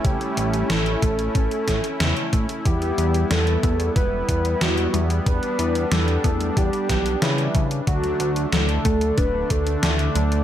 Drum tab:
HH |xxxxxxxxxxxxxxxx|xxxxxxxxx-xxxxxx|xxxxxxxxxxxxxxxx|xxxxxxxxx-xxxxxx|
SD |----o-----o-o---|----o-------o---|----o-----o-o---|----o-------o---|
BD |o-----o-o-o---o-|o-----o-o-o-----|o-----o-o-o---o-|o-----o-o-o-----|